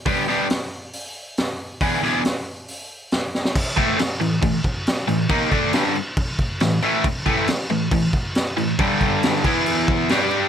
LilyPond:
<<
  \new Staff \with { instrumentName = "Overdriven electric guitar" } { \clef bass \time 4/4 \key e \dorian \tempo 4 = 137 <g b d' g'>8 <g b d' g'>8 r2. | <e b d' gis'>8 <e b d' gis'>8 r2. | \key e \mixolydian r8 <a, e a>8 r8 <a, e>8 <a, e>8 r4 <a, e>8 | <dis bes dis'>8 <d a d'>8 <g, d g>8 r4. <a, e>8 <a, e a>8 |
r8 <a, e a>8 r8 <a, e>8 <a, e>8 r4 <a, e>8 | <g, d g>4. <e b e'>4. <g d' g'>4 | }
  \new DrumStaff \with { instrumentName = "Drums" } \drummode { \time 4/4 <hho bd>8 sn8 <hho sn>4 hho4 <hho sn>4 | <hho bd>8 sn8 <hho sn>4 hho4 <hho sn>8 sn16 sn16 | <cymc bd>8 <cymc bd>8 <cymc sn>8 cymc8 <cymc bd>8 <cymc bd>8 <cymc sn>8 cymc8 | <cymc bd>8 <cymc bd>8 <cymc sn>8 cymc8 <cymc bd>8 <cymc bd>8 <cymc sn>8 cymc8 |
<cymc bd>8 <cymc bd>8 <cymc sn>8 cymc8 <cymc bd>8 <cymc bd>8 <cymc sn>8 cymc8 | <cymc bd>8 <cymc bd>8 <cymc sn>8 <cymc bd>8 cymc8 <cymc bd>8 <cymc sn>8 cymc8 | }
>>